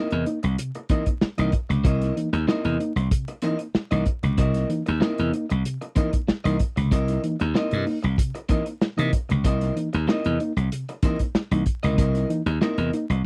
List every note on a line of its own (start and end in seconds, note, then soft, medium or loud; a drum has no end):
0.00 0.24 C4 medium
0.00 0.24 E4 medium
0.00 0.24 A#4 medium
0.00 0.25 D#5 medium
0.11 0.24 E2 loud
0.11 0.22 C3 medium
0.11 closed hi-hat soft
0.26 0.38 A#3 medium
0.26 0.39 D#4 medium
0.26 muted clean electric guitar stroke soft
0.26 closed hi-hat medium
0.43 0.56 C2 medium
0.43 muted clean electric guitar stroke soft
0.43 closed hi-hat medium
0.58 0.70 C3 medium
0.58 closed hi-hat loud
0.75 muted clean electric guitar stroke soft
0.75 closed hi-hat soft
0.89 1.01 E3 medium
0.89 1.02 A#3 medium
0.89 1.03 C4 medium
0.89 1.02 D#4 medium
0.89 1.04 E4 medium
0.89 1.04 A#4 medium
0.89 1.04 D#5 medium
0.89 kick medium
0.89 closed hi-hat medium
1.06 1.13 A#3 soft
1.06 1.13 D#4 soft
1.06 muted clean electric guitar stroke soft
1.06 kick medium
1.06 closed hi-hat medium
1.21 muted clean electric guitar stroke soft
1.21 muted slap bass stroke soft
1.21 snare loud
1.38 1.51 C2 medium
1.38 1.48 E3 medium
1.38 1.49 A#3 medium
1.38 1.51 C4 medium
1.38 1.49 D#4 medium
1.38 1.51 E4 medium
1.38 1.51 A#4 medium
1.38 1.50 D#5 medium
1.38 closed hi-hat medium
1.52 muted clean electric guitar stroke soft
1.52 kick medium
1.52 closed hi-hat medium
1.69 1.85 C#2 medium
1.69 1.81 C3 medium
1.69 muted clean electric guitar stroke soft
1.69 snare soft
1.69 closed hi-hat soft
1.84 2.10 C2 loud
1.84 1.97 C3 medium
1.84 2.14 C4 medium
1.84 2.14 E4 medium
1.84 2.14 A#4 medium
1.84 2.15 D#5 medium
1.84 kick loud
1.84 closed hi-hat medium
2.02 2.08 A#3 soft
2.02 2.08 D#4 soft
2.02 snare soft
2.02 closed hi-hat medium
2.16 2.28 E3 medium
2.16 2.28 A#3 medium
2.16 2.28 D#4 medium
2.16 closed hi-hat medium
2.33 2.45 D#2 loud
2.33 muted clean electric guitar stroke soft
2.33 closed hi-hat soft
2.48 2.60 A#3 medium
2.48 2.77 C4 medium
2.48 2.60 D#4 medium
2.48 2.77 E4 loud
2.48 2.77 A#4 medium
2.48 2.78 D#5 medium
2.48 snare loud
2.65 2.77 E2 medium
2.65 2.75 C3 medium
2.65 closed hi-hat soft
2.80 2.91 A#3 medium
2.80 2.92 D#4 medium
2.80 muted clean electric guitar stroke soft
2.80 closed hi-hat medium
2.96 3.08 C2 medium
2.96 muted clean electric guitar stroke soft
2.96 closed hi-hat medium
3.11 3.24 C3 medium
3.11 kick loud
3.11 closed hi-hat loud
3.28 muted clean electric guitar stroke soft
3.28 closed hi-hat soft
3.42 3.55 E3 medium
3.42 3.55 A#3 medium
3.42 3.56 C4 medium
3.42 3.55 D#4 medium
3.42 3.56 E4 medium
3.42 3.57 A#4 medium
3.42 3.57 D#5 loud
3.42 closed hi-hat medium
3.59 3.66 A#3 soft
3.59 3.66 D#4 soft
3.59 muted clean electric guitar stroke soft
3.59 closed hi-hat medium
3.75 muted clean electric guitar stroke soft
3.75 muted slap bass stroke soft
3.75 snare loud
3.91 4.04 C2 medium
3.91 4.02 E3 medium
3.91 4.02 A#3 medium
3.91 4.04 C4 medium
3.91 4.02 D#4 medium
3.91 4.04 E4 medium
3.91 4.04 A#4 medium
3.91 4.03 D#5 medium
3.91 closed hi-hat medium
4.06 muted clean electric guitar stroke soft
4.06 kick medium
4.06 closed hi-hat medium
4.23 4.38 C#2 medium
4.23 4.33 C3 medium
4.23 muted clean electric guitar stroke soft
4.23 snare soft
4.23 closed hi-hat soft
4.38 4.64 C2 loud
4.38 4.50 C3 medium
4.38 4.67 C4 medium
4.38 4.68 E4 medium
4.38 4.68 A#4 medium
4.38 4.68 D#5 medium
4.38 kick loud
4.38 closed hi-hat medium
4.54 4.61 A#3 soft
4.54 4.61 D#4 soft
4.54 snare soft
4.54 closed hi-hat medium
4.69 4.81 E3 medium
4.69 4.81 A#3 medium
4.69 4.82 D#4 medium
4.69 closed hi-hat medium
4.86 5.00 D#2 loud
4.86 muted clean electric guitar stroke medium
4.86 closed hi-hat soft
5.00 5.13 A#3 medium
5.00 5.30 C4 medium
5.00 5.13 D#4 medium
5.00 5.30 E4 medium
5.00 5.31 A#4 medium
5.00 5.31 D#5 medium
5.00 snare loud
5.18 5.31 E2 medium
5.18 5.28 C3 medium
5.18 closed hi-hat soft
5.33 5.45 A#3 medium
5.33 5.45 D#4 medium
5.33 muted clean electric guitar stroke soft
5.33 closed hi-hat medium
5.50 5.63 C2 medium
5.50 muted clean electric guitar stroke soft
5.50 closed hi-hat medium
5.65 5.77 C3 medium
5.65 closed hi-hat loud
5.81 muted clean electric guitar stroke soft
5.81 closed hi-hat soft
5.96 6.08 E3 medium
5.96 6.08 A#3 medium
5.96 6.10 C4 medium
5.96 6.08 D#4 medium
5.96 6.10 E4 medium
5.96 6.10 A#4 loud
5.96 6.11 D#5 loud
5.96 kick loud
5.96 closed hi-hat medium
6.12 6.19 A#3 soft
6.12 6.19 D#4 soft
6.12 muted clean electric guitar stroke soft
6.12 kick medium
6.12 closed hi-hat medium
6.27 muted clean electric guitar stroke soft
6.27 muted slap bass stroke soft
6.27 snare loud
6.44 6.57 C2 medium
6.44 6.55 E3 medium
6.44 6.55 A#3 medium
6.44 6.57 C4 medium
6.44 6.56 D#4 medium
6.44 6.57 E4 medium
6.44 6.57 A#4 medium
6.44 6.57 D#5 medium
6.44 closed hi-hat medium
6.59 muted clean electric guitar stroke soft
6.59 kick medium
6.59 closed hi-hat medium
6.76 6.92 C#2 medium
6.76 6.87 C3 medium
6.76 muted clean electric guitar stroke soft
6.76 snare soft
6.76 closed hi-hat medium
6.91 7.17 C2 loud
6.91 7.03 C3 medium
6.91 7.21 C4 medium
6.91 7.21 E4 medium
6.91 7.21 A#4 medium
6.91 7.21 D#5 medium
6.91 kick loud
6.91 closed hi-hat medium
7.08 7.14 A#3 soft
7.08 7.15 D#4 soft
7.08 snare soft
7.08 closed hi-hat medium
7.23 7.35 E3 medium
7.23 7.35 A#3 medium
7.23 7.35 D#4 medium
7.23 closed hi-hat medium
7.40 7.53 D#2 medium
7.40 muted clean electric guitar stroke soft
7.40 closed hi-hat soft
7.54 7.66 A#3 medium
7.54 7.84 C4 medium
7.54 7.67 D#4 medium
7.54 7.84 E4 medium
7.54 7.84 A#4 medium
7.54 7.85 D#5 loud
7.54 snare loud
7.71 7.84 G2 medium
7.71 7.82 C3 medium
7.71 closed hi-hat medium
7.86 7.98 A#3 medium
7.86 7.98 D#4 medium
7.86 muted clean electric guitar stroke soft
7.86 open hi-hat medium
8.03 8.16 C2 medium
8.03 muted clean electric guitar stroke medium
8.03 closed hi-hat medium
8.18 8.30 C3 medium
8.18 kick loud
8.18 closed hi-hat loud
8.35 muted clean electric guitar stroke soft
8.35 closed hi-hat soft
8.49 8.61 E3 medium
8.49 8.61 A#3 medium
8.49 8.63 C4 medium
8.49 8.61 D#4 medium
8.49 8.63 E4 medium
8.49 8.63 A#4 loud
8.49 8.64 D#5 loud
8.49 kick medium
8.49 closed hi-hat medium
8.66 8.72 A#3 soft
8.66 8.72 D#4 soft
8.66 muted clean electric guitar stroke soft
8.66 closed hi-hat medium
8.81 muted clean electric guitar stroke soft
8.81 snare loud
8.97 9.11 C3 medium
8.97 9.08 E3 medium
8.97 9.08 A#3 medium
8.97 9.11 C4 medium
8.97 9.08 D#4 medium
8.97 9.11 E4 medium
8.97 9.10 A#4 medium
8.97 9.10 D#5 medium
8.97 closed hi-hat medium
9.13 muted clean electric guitar stroke soft
9.13 kick medium
9.13 closed hi-hat medium
9.29 9.44 C#2 medium
9.29 9.40 C3 medium
9.29 muted clean electric guitar stroke soft
9.29 snare soft
9.29 closed hi-hat soft
9.44 9.70 C2 loud
9.44 9.56 C3 medium
9.44 9.74 C4 medium
9.44 9.74 E4 medium
9.44 9.74 A#4 medium
9.44 9.75 D#5 loud
9.44 kick loud
9.44 closed hi-hat medium
9.61 9.67 A#3 soft
9.61 9.67 D#4 soft
9.61 snare soft
9.61 closed hi-hat medium
9.76 9.88 E3 medium
9.76 9.88 A#3 medium
9.76 9.88 D#4 medium
9.76 closed hi-hat medium
9.93 10.06 D#2 medium
9.93 muted clean electric guitar stroke soft
9.93 closed hi-hat soft
10.08 10.19 A#3 medium
10.08 10.37 C4 medium
10.08 10.20 D#4 medium
10.08 10.37 E4 medium
10.08 10.38 A#4 medium
10.08 10.38 D#5 loud
10.08 snare loud
10.24 10.37 E2 medium
10.24 10.35 C3 medium
10.24 closed hi-hat soft
10.39 10.51 A#3 medium
10.39 10.52 D#4 medium
10.39 muted clean electric guitar stroke soft
10.39 closed hi-hat medium
10.56 10.68 C2 medium
10.56 muted clean electric guitar stroke soft
10.56 closed hi-hat medium
10.72 10.83 C3 medium
10.72 closed hi-hat loud
10.89 muted clean electric guitar stroke soft
10.89 closed hi-hat soft
11.03 11.15 E3 medium
11.03 11.15 A#3 medium
11.03 11.17 C4 loud
11.03 11.15 D#4 medium
11.03 11.17 E4 medium
11.03 11.18 A#4 loud
11.03 11.18 D#5 medium
11.03 kick loud
11.03 closed hi-hat medium
11.19 muted clean electric guitar stroke medium
11.19 kick medium
11.19 closed hi-hat medium
11.35 muted slap bass stroke soft
11.35 muted clean electric guitar stroke soft
11.35 snare loud
11.51 11.63 C2 medium
11.51 11.62 E3 medium
11.51 11.62 A#3 medium
11.51 11.62 D#4 medium
11.51 muted clean electric guitar stroke soft
11.51 closed hi-hat medium
11.66 kick medium
11.66 closed hi-hat medium
11.83 11.98 C#2 medium
11.83 11.94 C3 medium
11.83 11.96 C4 medium
11.83 11.96 E4 medium
11.83 11.96 A#4 medium
11.83 11.95 D#5 medium
11.83 snare soft
11.83 closed hi-hat medium
11.98 12.24 C2 loud
11.98 12.09 C3 medium
11.98 12.27 C4 medium
11.98 12.27 E4 medium
11.98 12.27 A#4 medium
11.98 12.28 D#5 medium
11.98 kick loud
11.98 closed hi-hat medium
12.15 12.21 A#3 soft
12.15 12.21 D#4 soft
12.15 snare soft
12.15 closed hi-hat medium
12.29 12.41 E3 medium
12.29 12.41 A#3 medium
12.29 12.41 D#4 medium
12.29 closed hi-hat medium
12.46 12.58 D#2 medium
12.46 muted clean electric guitar stroke medium
12.46 closed hi-hat soft
12.61 12.73 A#3 medium
12.61 12.90 C4 medium
12.61 12.73 D#4 medium
12.61 12.90 E4 medium
12.61 12.91 A#4 medium
12.61 12.91 D#5 medium
12.61 snare loud
12.78 12.90 E2 medium
12.78 12.88 C3 medium
12.78 closed hi-hat soft
12.93 13.04 A#3 medium
12.93 13.05 D#4 medium
12.93 muted clean electric guitar stroke soft
12.93 closed hi-hat medium
13.10 13.21 C2 medium
13.10 muted clean electric guitar stroke medium
13.10 closed hi-hat medium